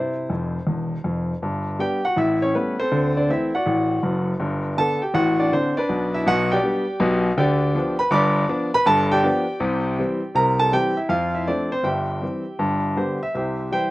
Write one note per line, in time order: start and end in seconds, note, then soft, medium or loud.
0.00 0.22 C3 soft
0.00 0.24 E4 medium
0.00 1.29 C5 medium
0.29 0.57 F1 medium
0.29 0.58 F2 medium
0.67 0.95 E1 medium
0.67 0.95 E2 medium
1.04 1.33 F1 medium
1.04 1.32 F2 medium
1.42 1.74 G1 medium
1.42 1.74 G2 medium
1.79 1.99 G3 medium
1.79 2.00 B3 medium
1.79 2.00 D4 soft
1.79 2.03 G4 medium
1.79 2.04 G5 medium
2.05 2.17 F#4 medium
2.05 2.17 F#5 medium
2.16 2.48 A1 medium
2.16 2.48 A2 medium
2.16 2.40 E4 medium
2.16 2.41 E5 medium
2.42 2.53 C#4 medium
2.42 2.54 C#5 medium
2.54 2.74 G3 soft
2.54 2.75 A3 soft
2.54 2.78 B3 medium
2.54 2.75 C#4 medium
2.54 2.78 B4 medium
2.80 3.14 C4 medium
2.80 3.14 A4 medium
2.80 3.16 C5 medium
2.92 3.23 D2 medium
2.92 3.23 D3 medium
3.17 3.29 D4 medium
3.17 3.29 D5 medium
3.29 3.49 E3 medium
3.29 3.50 A3 soft
3.29 3.50 C4 medium
3.29 3.52 E4 medium
3.29 3.54 E5 medium
3.55 4.24 F#4 medium
3.55 4.25 D5 medium
3.55 4.28 F#5 medium
3.66 3.97 A1 medium
3.66 3.97 A2 medium
4.03 4.33 F#1 medium
4.03 4.32 F#2 medium
4.40 4.71 G1 medium
4.40 4.71 G2 medium
4.77 4.98 D3 medium
4.77 4.98 B3 medium
4.77 4.98 D4 medium
4.77 5.01 A4 medium
4.77 5.02 A5 loud
5.02 5.14 G4 medium
5.02 5.15 G5 medium
5.14 5.46 A1 medium
5.14 5.46 A2 medium
5.14 5.38 F#4 medium
5.14 5.39 F#5 loud
5.40 5.52 D4 medium
5.40 5.52 D5 medium
5.52 5.73 D3 medium
5.52 5.76 C4 medium
5.52 5.73 D4 medium
5.52 5.77 C5 medium
5.77 6.12 D4 medium
5.77 6.12 B4 medium
5.77 6.14 D5 medium
5.89 6.19 B1 medium
5.89 6.19 B2 medium
6.14 6.26 E4 medium
6.14 6.27 E5 medium
6.26 6.56 B1 medium
6.26 6.56 B2 medium
6.26 6.50 F#4 medium
6.26 6.51 F#5 loud
6.52 7.22 G4 medium
6.52 7.22 D5 medium
6.52 7.25 G5 medium
6.63 6.84 G3 medium
6.63 6.84 B3 medium
6.63 6.84 D4 medium
7.00 7.30 B1 loud
7.00 7.30 B2 loud
7.37 7.69 D2 medium
7.37 7.69 D3 loud
7.37 7.96 G4 medium
7.37 7.96 D5 medium
7.37 7.99 G5 medium
7.75 7.95 F3 medium
7.75 7.96 B3 medium
7.75 7.96 D4 medium
7.99 8.12 B4 medium
7.99 8.12 B5 loud
8.11 8.43 G1 loud
8.11 8.43 G2 medium
8.11 8.70 D5 medium
8.11 8.70 B5 medium
8.11 8.74 D6 loud
8.48 8.69 F3 medium
8.48 8.70 B3 medium
8.48 8.70 D4 medium
8.74 8.87 B4 medium
8.74 8.87 B5 loud
8.86 9.18 G1 medium
8.86 9.18 G2 loud
8.86 9.10 A4 medium
8.86 9.11 A5 loud
9.12 10.33 G4 medium
9.12 10.33 D5 medium
9.12 10.36 G5 loud
9.23 9.44 F3 medium
9.23 9.44 B3 medium
9.23 9.45 D4 medium
9.60 9.92 C2 medium
9.60 9.92 C3 medium
9.98 10.19 E3 medium
9.98 10.19 G3 medium
9.98 10.20 C4 medium
10.35 10.67 C2 medium
10.35 10.67 C3 medium
10.35 10.59 A#4 medium
10.35 10.60 A#5 loud
10.59 10.72 A4 medium
10.59 10.73 A5 loud
10.72 10.93 E3 medium
10.72 10.93 G3 medium
10.72 10.93 C4 medium
10.72 10.96 G4 medium
10.72 10.97 G5 loud
10.97 11.10 E4 medium
10.97 11.10 E5 medium
11.09 11.41 F2 medium
11.09 11.41 F3 medium
11.09 11.33 F4 medium
11.09 11.34 F5 medium
11.35 11.47 E4 medium
11.35 11.47 E5 medium
11.47 11.68 F3 soft
11.47 11.68 A3 soft
11.47 11.68 C4 medium
11.47 11.71 D4 medium
11.47 11.72 D5 medium
11.72 11.84 C4 medium
11.72 11.85 C5 medium
11.83 12.16 G1 medium
11.83 12.16 G2 medium
11.83 12.93 G4 soft
11.83 12.93 E5 medium
11.83 12.96 G5 medium
12.21 12.42 E3 soft
12.21 12.43 G3 soft
12.21 12.43 C4 medium
12.59 12.91 G1 medium
12.59 12.91 G2 medium
12.96 13.17 D3 soft
12.96 13.17 G3 soft
12.96 13.18 B3 medium
12.96 13.20 G4 medium
12.96 13.21 C5 medium
13.23 13.34 E5 medium
13.34 13.66 C2 medium
13.34 13.66 C3 medium
13.34 13.70 G4 medium
13.34 13.70 C5 medium
13.34 13.72 E5 medium
13.71 13.91 E3 soft
13.71 13.91 G3 soft
13.71 13.91 E4 medium
13.71 13.91 C5 medium
13.71 13.91 E5 medium
13.71 13.91 G5 medium